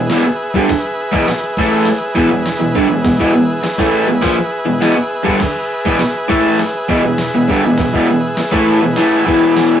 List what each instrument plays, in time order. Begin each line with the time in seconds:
Already playing: transistor combo organ G#4 B4 E5
0.10 overdriven electric guitar E2 B2, snare, open hi-hat
0.26 muted overdriven electric guitar stroke
0.54 overdriven electric guitar G2 D3, kick
0.69 transistor combo organ G#4 B4 E5, kick, snare, open hi-hat
1.12 overdriven electric guitar E2 B2, kick
1.28 muted overdriven electric guitar stroke, snare, open hi-hat
1.57 overdriven electric guitar A2 E3 A3, kick
1.85 muted overdriven electric guitar stroke, snare, open hi-hat
2.15 overdriven electric guitar E2 B2, kick
2.31 overdriven electric guitar E2 B2
2.46 snare, open hi-hat
2.60 overdriven electric guitar E2 B2
2.75 overdriven electric guitar G2 D3, kick
2.89 overdriven electric guitar E2 B2
3.04 overdriven electric guitar E2 B2, kick, snare, open hi-hat
3.19 overdriven electric guitar E2 B2, kick
3.34 overdriven electric guitar E2 B2
3.63 muted overdriven electric guitar stroke, snare, open hi-hat
3.78 overdriven electric guitar A2 E3 A3, kick
4.07 overdriven electric guitar E2 B2
4.21 overdriven electric guitar A#2 F3, kick, snare, open hi-hat
4.36 muted overdriven electric guitar stroke
4.65 overdriven electric guitar E2 B2
4.80 overdriven electric guitar E2 B2, snare, open hi-hat
4.96 muted overdriven electric guitar stroke
5.24 overdriven electric guitar G2 D3, kick
5.40 transistor combo organ G#4 B4 E5, kick, snare, crash
5.85 overdriven electric guitar E2 B2, kick
5.99 muted overdriven electric guitar stroke, snare, open hi-hat
6.29 overdriven electric guitar A2 E3 A3, kick
6.58 muted overdriven electric guitar stroke, snare, open hi-hat
6.89 overdriven electric guitar E2 B2, kick
7.04 overdriven electric guitar E2 B2
7.18 snare, open hi-hat
7.35 overdriven electric guitar E2 B2
7.48 overdriven electric guitar G2 D3, kick
7.65 overdriven electric guitar E2 B2
7.78 overdriven electric guitar E2 B2, kick, snare, open hi-hat
7.93 overdriven electric guitar E2 B2, kick
8.10 overdriven electric guitar E2 B2
8.37 muted overdriven electric guitar stroke, snare, open hi-hat
8.52 overdriven electric guitar A2 E3 A3, kick
8.81 overdriven electric guitar E2 B2
8.96 overdriven electric guitar A2 E3 A3, snare, open hi-hat
9.25 overdriven electric guitar E2 B2 E3, kick
9.57 snare, open hi-hat